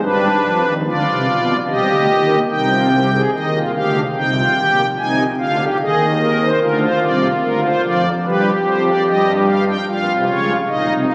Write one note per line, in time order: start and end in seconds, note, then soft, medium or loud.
0.02 0.28 G2 medium
0.02 0.28 G3 medium
0.02 0.73 D4 medium
0.02 0.74 B4 medium
0.44 0.62 F2 medium
0.44 0.62 F3 medium
0.64 0.82 D#2 medium
0.64 0.82 D#3 medium
0.86 1.04 D2 medium
0.86 1.04 D3 medium
0.86 1.57 F4 medium
0.86 1.57 D5 medium
1.06 1.24 C2 medium
1.06 1.24 C3 medium
1.27 1.52 B1 medium
1.27 1.52 B2 medium
1.68 1.86 C2 medium
1.68 1.86 C3 medium
1.68 2.39 G4 medium
1.68 2.39 D#5 medium
1.88 2.06 D2 medium
1.88 2.06 D3 medium
2.09 2.35 D#2 medium
2.09 2.35 D#3 medium
2.50 3.21 C2 medium
2.50 3.21 C3 medium
2.50 2.68 D#4 medium
2.50 3.21 G5 medium
2.71 2.89 F4 medium
2.92 3.10 G4 medium
3.13 3.30 G#4 medium
3.33 3.59 D#2 medium
3.33 3.59 D#3 medium
3.33 3.51 D#4 medium
3.33 3.59 D#5 medium
3.54 3.72 F4 medium
3.75 4.00 D2 medium
3.75 4.00 D3 medium
3.75 4.00 G4 medium
3.75 4.00 F5 medium
4.16 4.41 C2 medium
4.16 4.41 C3 medium
4.16 4.33 D#4 medium
4.16 4.86 G5 medium
4.36 4.54 F4 medium
4.56 4.82 A#1 soft
4.56 4.82 A#2 soft
4.56 4.82 G4 medium
4.98 5.24 C2 medium
4.98 5.23 C3 medium
4.98 5.24 D#4 medium
4.98 5.24 G#5 medium
5.39 5.65 D2 medium
5.39 5.65 D3 medium
5.39 5.57 F4 medium
5.39 5.65 F5 medium
5.59 5.77 G4 medium
5.80 6.51 D#2 soft
5.80 6.51 D#3 medium
5.80 6.06 G#4 medium
5.80 6.51 D#5 medium
6.21 6.39 A#4 medium
6.42 6.59 C5 medium
6.61 6.87 D2 medium
6.61 6.87 D3 medium
6.61 8.02 F4 medium
6.61 6.79 A#4 medium
6.81 6.99 C5 medium
7.02 7.27 C2 medium
7.02 7.27 C3 medium
7.02 7.27 D5 medium
7.43 7.68 D2 medium
7.43 7.68 D3 medium
7.43 7.61 A#4 medium
7.64 7.81 C5 medium
7.84 8.09 F2 medium
7.84 8.09 F3 medium
7.84 8.09 D5 medium
8.25 8.50 G2 medium
8.25 8.50 G3 medium
8.25 9.65 G4 medium
8.25 8.50 B4 medium
8.65 8.90 F2 medium
8.65 8.90 F3 medium
8.65 8.83 C5 medium
8.86 9.03 D5 medium
9.07 9.76 G2 medium
9.07 9.76 G3 medium
9.07 9.32 D#5 medium
9.46 9.64 F5 medium
9.68 9.85 G5 medium
9.88 10.05 A#1 medium
9.88 10.05 A#2 medium
9.88 10.57 F4 medium
9.88 10.13 F5 medium
10.08 10.25 C2 medium
10.08 10.25 C3 medium
10.28 10.53 C#2 medium
10.28 10.53 C#3 medium
10.28 10.53 C#5 medium
10.68 10.86 A#1 medium
10.68 10.86 A#2 medium
10.68 11.15 D#4 medium
10.68 10.93 D#5 medium
10.88 11.06 C2 medium
10.88 11.06 C3 medium
11.09 11.15 C#2 medium
11.09 11.15 C#3 medium
11.09 11.15 F5 medium